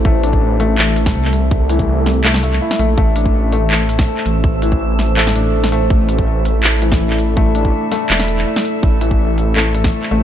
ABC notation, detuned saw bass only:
X:1
M:4/4
L:1/8
Q:"Swing 16ths" 1/4=164
K:Am
V:1 name="Detuned saw bass" clef=bass
A,,,4 A,,,2 C,,2- | C,,4 C,,2 z _B,,, | A,,,4 A,,,2 z A,,,- | A,,,4- A,,, A,,,3 |
A,,,4 A,,,2 A,,,2- | A,,,2 z2 E,,,2 z2 | A,,,4 A,,,2 z A,,, |]